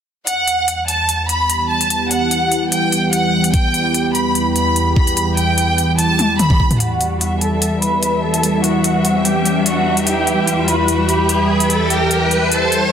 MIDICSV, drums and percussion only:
0, 0, Header, 1, 2, 480
1, 0, Start_track
1, 0, Key_signature, 1, "minor"
1, 0, Tempo, 408163
1, 319, Time_signature, 4, 2, 24, 8
1, 15194, End_track
2, 0, Start_track
2, 0, Title_t, "Drums"
2, 319, Note_on_c, 9, 42, 75
2, 436, Note_off_c, 9, 42, 0
2, 559, Note_on_c, 9, 42, 49
2, 676, Note_off_c, 9, 42, 0
2, 799, Note_on_c, 9, 42, 74
2, 916, Note_off_c, 9, 42, 0
2, 1039, Note_on_c, 9, 42, 50
2, 1156, Note_off_c, 9, 42, 0
2, 1279, Note_on_c, 9, 42, 74
2, 1396, Note_off_c, 9, 42, 0
2, 1519, Note_on_c, 9, 42, 49
2, 1636, Note_off_c, 9, 42, 0
2, 1759, Note_on_c, 9, 42, 75
2, 1876, Note_off_c, 9, 42, 0
2, 2125, Note_on_c, 9, 42, 57
2, 2238, Note_off_c, 9, 42, 0
2, 2238, Note_on_c, 9, 42, 74
2, 2356, Note_off_c, 9, 42, 0
2, 2479, Note_on_c, 9, 42, 50
2, 2596, Note_off_c, 9, 42, 0
2, 2718, Note_on_c, 9, 42, 72
2, 2836, Note_off_c, 9, 42, 0
2, 2959, Note_on_c, 9, 42, 50
2, 3076, Note_off_c, 9, 42, 0
2, 3199, Note_on_c, 9, 42, 74
2, 3316, Note_off_c, 9, 42, 0
2, 3439, Note_on_c, 9, 42, 50
2, 3556, Note_off_c, 9, 42, 0
2, 3679, Note_on_c, 9, 42, 78
2, 3796, Note_off_c, 9, 42, 0
2, 4046, Note_on_c, 9, 42, 59
2, 4159, Note_off_c, 9, 42, 0
2, 4159, Note_on_c, 9, 36, 111
2, 4159, Note_on_c, 9, 42, 74
2, 4276, Note_off_c, 9, 36, 0
2, 4276, Note_off_c, 9, 42, 0
2, 4399, Note_on_c, 9, 42, 48
2, 4517, Note_off_c, 9, 42, 0
2, 4639, Note_on_c, 9, 42, 72
2, 4756, Note_off_c, 9, 42, 0
2, 4879, Note_on_c, 9, 42, 49
2, 4996, Note_off_c, 9, 42, 0
2, 5118, Note_on_c, 9, 42, 74
2, 5236, Note_off_c, 9, 42, 0
2, 5359, Note_on_c, 9, 42, 52
2, 5476, Note_off_c, 9, 42, 0
2, 5598, Note_on_c, 9, 42, 79
2, 5716, Note_off_c, 9, 42, 0
2, 5838, Note_on_c, 9, 36, 62
2, 5956, Note_off_c, 9, 36, 0
2, 5965, Note_on_c, 9, 42, 57
2, 6079, Note_off_c, 9, 42, 0
2, 6079, Note_on_c, 9, 42, 70
2, 6196, Note_off_c, 9, 42, 0
2, 6319, Note_on_c, 9, 42, 48
2, 6436, Note_off_c, 9, 42, 0
2, 6559, Note_on_c, 9, 42, 74
2, 6676, Note_off_c, 9, 42, 0
2, 6799, Note_on_c, 9, 42, 48
2, 6917, Note_off_c, 9, 42, 0
2, 7039, Note_on_c, 9, 42, 76
2, 7157, Note_off_c, 9, 42, 0
2, 7279, Note_on_c, 9, 42, 48
2, 7279, Note_on_c, 9, 48, 56
2, 7397, Note_off_c, 9, 42, 0
2, 7397, Note_off_c, 9, 48, 0
2, 7519, Note_on_c, 9, 42, 74
2, 7519, Note_on_c, 9, 47, 76
2, 7637, Note_off_c, 9, 42, 0
2, 7637, Note_off_c, 9, 47, 0
2, 7645, Note_on_c, 9, 36, 98
2, 7646, Note_on_c, 9, 47, 70
2, 7759, Note_off_c, 9, 36, 0
2, 7759, Note_on_c, 9, 36, 63
2, 7763, Note_off_c, 9, 47, 0
2, 7876, Note_off_c, 9, 36, 0
2, 7886, Note_on_c, 9, 42, 55
2, 7886, Note_on_c, 9, 45, 82
2, 7999, Note_off_c, 9, 42, 0
2, 7999, Note_on_c, 9, 42, 80
2, 8004, Note_off_c, 9, 45, 0
2, 8116, Note_off_c, 9, 42, 0
2, 8239, Note_on_c, 9, 42, 52
2, 8357, Note_off_c, 9, 42, 0
2, 8479, Note_on_c, 9, 42, 77
2, 8597, Note_off_c, 9, 42, 0
2, 8719, Note_on_c, 9, 42, 51
2, 8836, Note_off_c, 9, 42, 0
2, 8959, Note_on_c, 9, 42, 82
2, 9076, Note_off_c, 9, 42, 0
2, 9199, Note_on_c, 9, 42, 52
2, 9316, Note_off_c, 9, 42, 0
2, 9439, Note_on_c, 9, 42, 81
2, 9556, Note_off_c, 9, 42, 0
2, 9805, Note_on_c, 9, 42, 60
2, 9919, Note_off_c, 9, 42, 0
2, 9919, Note_on_c, 9, 42, 81
2, 10036, Note_off_c, 9, 42, 0
2, 10158, Note_on_c, 9, 42, 51
2, 10276, Note_off_c, 9, 42, 0
2, 10399, Note_on_c, 9, 42, 81
2, 10516, Note_off_c, 9, 42, 0
2, 10639, Note_on_c, 9, 42, 51
2, 10756, Note_off_c, 9, 42, 0
2, 10879, Note_on_c, 9, 42, 81
2, 10996, Note_off_c, 9, 42, 0
2, 11119, Note_on_c, 9, 42, 54
2, 11236, Note_off_c, 9, 42, 0
2, 11359, Note_on_c, 9, 42, 81
2, 11476, Note_off_c, 9, 42, 0
2, 11725, Note_on_c, 9, 42, 61
2, 11839, Note_off_c, 9, 42, 0
2, 11839, Note_on_c, 9, 42, 82
2, 11956, Note_off_c, 9, 42, 0
2, 12079, Note_on_c, 9, 42, 51
2, 12196, Note_off_c, 9, 42, 0
2, 12318, Note_on_c, 9, 42, 78
2, 12436, Note_off_c, 9, 42, 0
2, 12559, Note_on_c, 9, 42, 52
2, 12676, Note_off_c, 9, 42, 0
2, 12798, Note_on_c, 9, 42, 80
2, 12916, Note_off_c, 9, 42, 0
2, 13039, Note_on_c, 9, 42, 53
2, 13156, Note_off_c, 9, 42, 0
2, 13278, Note_on_c, 9, 42, 84
2, 13396, Note_off_c, 9, 42, 0
2, 13645, Note_on_c, 9, 42, 62
2, 13759, Note_off_c, 9, 42, 0
2, 13759, Note_on_c, 9, 42, 79
2, 13876, Note_off_c, 9, 42, 0
2, 13998, Note_on_c, 9, 42, 52
2, 14116, Note_off_c, 9, 42, 0
2, 14239, Note_on_c, 9, 42, 74
2, 14356, Note_off_c, 9, 42, 0
2, 14478, Note_on_c, 9, 42, 49
2, 14596, Note_off_c, 9, 42, 0
2, 14718, Note_on_c, 9, 42, 78
2, 14836, Note_off_c, 9, 42, 0
2, 14958, Note_on_c, 9, 42, 51
2, 15076, Note_off_c, 9, 42, 0
2, 15194, End_track
0, 0, End_of_file